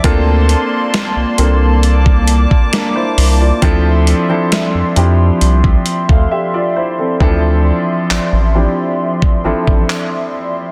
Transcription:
Already playing: analog synth pad D5
0.04 analog synth bass D2, grand piano A#3 C4 D4 F4 A4, analog synth pad A#3 A5 C6, kick, closed hi-hat
0.49 closed hi-hat
0.94 snare, closed hi-hat
1.16 analog synth bass C2
1.38 analog synth bass C2, grand piano A#3 C4 D4 F4 A4, closed hi-hat
1.83 analog synth pad D6, closed hi-hat
2.06 kick
2.28 closed hi-hat
2.51 kick
2.73 grand piano D4 A#4, snare, closed hi-hat
2.96 grand piano E4 C5
3.18 analog synth bass C2, open hi-hat
3.40 grand piano F4 D5
3.62 analog synth bass D2, grand piano F3 C4 D4 E4 A4, analog synth pad F3 E5 C6, kick, closed hi-hat
4.07 closed hi-hat
4.29 grand piano F3 C4 D4 E4 A4
4.52 snare, closed hi-hat
4.75 analog synth bass F2
4.96 analog synth bass F2, grand piano F3 C4 D4 E4 G4, closed hi-hat
5.41 analog synth bass C2, analog synth pad E5, closed hi-hat
5.64 kick
5.86 closed hi-hat
6.09 analog synth bass D2, grand piano A4 F5, kick
6.31 grand piano G4 E5
6.54 grand piano F4 D5
6.76 grand piano E4 C5
6.99 grand piano C4 A4
7.20 analog synth bass D2, grand piano E3 C4 D4 E4 A4, analog synth pad F3 D5 E5 C6, kick
7.27 grand piano F3
8.10 analog synth bass A1, clap
8.33 analog synth bass A1
8.55 grand piano F3 C4 D4 E4 G4
9.22 kick
9.44 analog synth bass A1, grand piano F3 C4 D4 E4 A4
9.67 analog synth bass A1, kick
9.90 clap

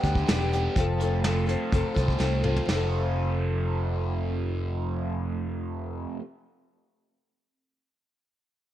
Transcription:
Already playing: overdriven electric guitar G3 B3
0.04 fingered electric bass D2, steel-string acoustic guitar G3 B3 D4 G4, kick, closed hi-hat
0.16 kick
0.27 fingered electric bass E1, steel-string acoustic guitar G2 D3 G3 B3 D4 G4, snare, closed hi-hat
0.52 steel-string acoustic guitar G3 B3 D4 G4, closed hi-hat
0.76 fingered electric bass F1, steel-string acoustic guitar F3 C4 F4 A4, kick, closed hi-hat
1.00 overdriven electric guitar A3, steel-string acoustic guitar C4 F4 A4, closed hi-hat
1.24 steel-string acoustic guitar F3 C4 F4 A4, overdriven electric guitar A3, snare, closed hi-hat
1.46 steel-string acoustic guitar C4 F4 A4, closed hi-hat
1.72 fingered electric bass F1, steel-string acoustic guitar F3 C4 F4 A4, overdriven electric guitar A3, kick, closed hi-hat
1.94 fingered electric bass C2, steel-string acoustic guitar C4 F4 A4, kick, closed hi-hat
2.08 kick
2.18 fingered electric bass C2, steel-string acoustic guitar F3 C4 F4 A4, overdriven electric guitar A3, snare
2.43 steel-string acoustic guitar C4 F4 A4, mid tom
2.56 floor tom
2.66 fingered electric bass F1, overdriven electric guitar F2 C3 A3, steel-string acoustic guitar F3 C4, snare
2.73 steel-string acoustic guitar F4 A4

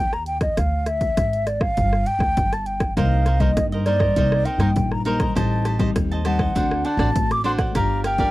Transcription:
Already playing: upright bass D#2, flute G5
0.13 flute A#5, cross-stick
0.26 flute G5, closed hi-hat
0.41 flute D#5, kick, cross-stick, closed hi-hat
0.57 upright bass D2, flute F5, kick, cross-stick, closed hi-hat
0.86 flute E5, cross-stick, closed hi-hat
1.01 kick, closed hi-hat
1.17 upright bass G#1, kick, cross-stick, closed hi-hat
1.33 closed hi-hat
1.47 flute D5, cross-stick, closed hi-hat
1.61 flute F5, kick, cross-stick
1.77 upright bass G1, kick, closed hi-hat
1.93 cross-stick
2.06 flute G5, closed hi-hat
2.19 upright bass D2, kick, cross-stick
2.37 upright bass G1, kick, closed hi-hat
2.53 flute A5, cross-stick, closed hi-hat
2.66 flute G5, closed hi-hat
2.80 kick, cross-stick, closed hi-hat
2.97 upright bass C2, nylon-string guitar C3 G3 A#3 D#4, cavaquinho D#4 A#4 C5 D#5, flute F5, kick, cross-stick, closed hi-hat
3.26 cavaquinho D#4 A#4 C5 D#5, cross-stick, closed hi-hat
3.40 nylon-string guitar G3 A#3 D#4, cavaquinho D#4 A#4 C5 D#5, flute D#5, kick, closed hi-hat
3.57 nylon-string guitar G2, upright bass G2, kick, cross-stick, closed hi-hat
3.72 cavaquinho A#4 C5 D#5, closed hi-hat
3.86 nylon-string guitar G3 A#3 D#4, cavaquinho D#4 A#4 C5 D#5, flute D5, cross-stick, closed hi-hat
3.99 cavaquinho A#4 C5 D#5, kick, cross-stick
4.16 upright bass C2, nylon-string guitar C3 G3 A#3 D#4, cavaquinho D#4 A#4 C5 D#5, kick, closed hi-hat
4.32 cross-stick
4.45 cavaquinho D#4 A#4 C5 D#5, flute G5, closed hi-hat
4.58 upright bass G2, nylon-string guitar G3 A#3 D#4, cavaquinho D#4 A#4 C5 D#5, kick, cross-stick, closed hi-hat
4.76 upright bass A#1, nylon-string guitar G2, kick, closed hi-hat
4.92 flute A#5, cross-stick
5.05 nylon-string guitar G3 A#3 D#4, cavaquinho D#4 A#4 C5 D#5, flute A#5, closed hi-hat
5.20 cavaquinho A#4 C5 D#5, kick, cross-stick, closed hi-hat
5.35 upright bass A1, nylon-string guitar A2 G3 C4 D#4, cavaquinho G4 C5 D#5 A5, flute A5, kick, cross-stick, closed hi-hat
5.65 cavaquinho G4 C5 D#5 A5, cross-stick, closed hi-hat
5.79 nylon-string guitar G3 C4 D#4, cavaquinho G4 C5 D#5 A5, kick, closed hi-hat
5.95 upright bass D#2, nylon-string guitar A2, kick, cross-stick, closed hi-hat
6.12 cavaquinho C5 D#5 A5, closed hi-hat
6.25 nylon-string guitar G3 C4 D#4, cavaquinho G4 C5 D#5 A5, flute F#5, cross-stick, closed hi-hat
6.39 cavaquinho C5 D#5 A5, kick, cross-stick
6.55 upright bass D2, nylon-string guitar D3 A3 C4 F#4, cavaquinho D4 C5 D5 F#5, kick, closed hi-hat
6.71 cross-stick
6.84 cavaquinho D4 C5 D5 F#5, flute A5, closed hi-hat
6.97 upright bass A1, nylon-string guitar A3 C4 F#4, cavaquinho D4 C5 D5 F#5, kick, cross-stick
7.15 upright bass A1, nylon-string guitar A2, kick, closed hi-hat
7.31 flute D6, cross-stick, closed hi-hat
7.44 nylon-string guitar A3 C4 F#4, cavaquinho D4 C5 D5 F#5, flute C6, closed hi-hat
7.58 cavaquinho C5 D5 F#5, kick, cross-stick, closed hi-hat
7.75 upright bass G1, nylon-string guitar G3 D4 F4 A#4, cavaquinho G4 A#4 D5 F5, flute A#5, kick, cross-stick, closed hi-hat
8.04 cavaquinho G4 A#4 D5 F5, flute G5, cross-stick, closed hi-hat
8.18 nylon-string guitar D4 F4 A#4, cavaquinho G4 A#4 D5 F5, kick, closed hi-hat

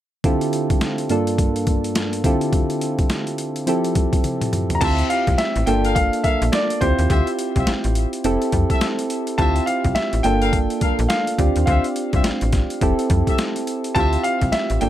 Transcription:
0.24 synth keys D3 C4 E4 F4 G4 A4, kick, closed hi-hat
0.41 closed hi-hat
0.53 closed hi-hat
0.70 kick, closed hi-hat
0.81 snare, closed hi-hat
0.98 closed hi-hat
1.09 synth keys G2 A#3 D4 F4 A4, closed hi-hat
1.27 closed hi-hat
1.38 kick, closed hi-hat
1.56 closed hi-hat
1.67 kick, closed hi-hat
1.84 closed hi-hat
1.95 snare, closed hi-hat
2.13 closed hi-hat
2.24 synth keys D3 C4 E4 F4 G4 A4, kick, closed hi-hat
2.41 closed hi-hat
2.53 kick, closed hi-hat
2.70 closed hi-hat
2.81 closed hi-hat
2.99 kick, closed hi-hat
3.10 snare, closed hi-hat
3.27 closed hi-hat
3.38 closed hi-hat
3.56 closed hi-hat
3.67 synth keys F3 C4 E4 G4 A4, closed hi-hat
3.84 closed hi-hat
3.95 kick, closed hi-hat
4.13 kick, closed hi-hat
4.24 closed hi-hat, high tom
4.41 closed hi-hat, mid tom
4.53 closed hi-hat, mid tom
4.70 closed hi-hat, floor tom
4.75 grand piano A#5
4.81 fm bass D2, synth keys C4 E4 F4 G4, horn section F4 G4 C5 E5, grand piano A5, kick, closed hi-hat, crash
4.98 closed hi-hat
5.10 grand piano F5, closed hi-hat
5.27 fm bass C2, kick, closed hi-hat
5.38 grand piano E5, snare, closed hi-hat
5.56 fm bass A1, closed hi-hat
5.66 fm bass G1, synth keys A#3 D4 F4 A4, grand piano G5, closed hi-hat
5.84 horn section A4 A#4 F5, closed hi-hat
5.95 grand piano F5, kick, closed hi-hat
6.13 closed hi-hat
6.24 horn section A4 A#4 F5, grand piano E5, kick, closed hi-hat
6.42 fm bass A#1, closed hi-hat
6.52 grand piano D5, snare, closed hi-hat
6.70 closed hi-hat
6.81 fm bass D2, synth keys C4 E4 F4 G4, grand piano C5, kick, closed hi-hat
6.99 fm bass D#2, closed hi-hat
7.10 fm bass D2, horn section F4 G4 C5 E5, kick, closed hi-hat
7.27 closed hi-hat
7.39 closed hi-hat
7.55 fm bass C2, horn section F4 G4 C5 E5, kick, closed hi-hat
7.67 fm bass A1, snare, closed hi-hat
7.84 fm bass A1, closed hi-hat
7.95 closed hi-hat
8.13 closed hi-hat
8.24 fm bass F1, synth keys C4 E4 G4 A4, closed hi-hat
8.42 closed hi-hat
8.52 fm bass F2, kick, closed hi-hat
8.70 horn section G4 A4 E5, kick, closed hi-hat
8.81 snare, closed hi-hat
8.99 closed hi-hat
9.10 closed hi-hat
9.27 closed hi-hat
9.38 fm bass D2, synth keys C4 E4 F4 G4, horn section F4 G4 C5 E5, grand piano A5, kick, closed hi-hat
9.56 closed hi-hat
9.66 grand piano F5, closed hi-hat
9.84 fm bass C2, kick, closed hi-hat
9.95 grand piano E5, snare, closed hi-hat
10.13 fm bass A1, closed hi-hat
10.23 fm bass G1, synth keys A#3 D4 F4 A4, grand piano G5, closed hi-hat
10.41 horn section A4 A#4 F5, closed hi-hat
10.53 kick, closed hi-hat
10.70 closed hi-hat
10.81 horn section A4 A#4 F5, kick, closed hi-hat
10.99 fm bass A#1, closed hi-hat
11.09 grand piano F5, snare, closed hi-hat
11.27 closed hi-hat
11.38 fm bass D2, synth keys C4 D4 F4 G4, kick, closed hi-hat
11.56 fm bass D#2, closed hi-hat
11.66 fm bass D2, horn section F4 G4 C5 E5, grand piano F5, kick, closed hi-hat
11.84 closed hi-hat
11.96 closed hi-hat
12.13 fm bass C2, horn section F4 G4 C5 E5, kick, closed hi-hat
12.24 snare, closed hi-hat
12.41 fm bass A1, closed hi-hat
12.53 kick, snare, closed hi-hat
12.70 closed hi-hat
12.81 fm bass F1, synth keys C4 E4 G4 A4, kick, closed hi-hat
12.99 closed hi-hat
13.10 fm bass F2, kick, closed hi-hat
13.27 horn section G4 A4 E5, kick, closed hi-hat
13.38 snare, closed hi-hat
13.56 closed hi-hat
13.67 closed hi-hat
13.84 closed hi-hat
13.95 fm bass D2, synth keys C4 E4 F4 G4, horn section F4 G4 C5 E5, grand piano A5, kick, closed hi-hat
14.13 closed hi-hat
14.23 grand piano F5, closed hi-hat
14.41 fm bass C2, kick, closed hi-hat
14.52 grand piano E5, snare, closed hi-hat
14.70 fm bass A1, closed hi-hat
14.81 fm bass G1, synth keys A#3 D4 F4 A4, grand piano G5, closed hi-hat

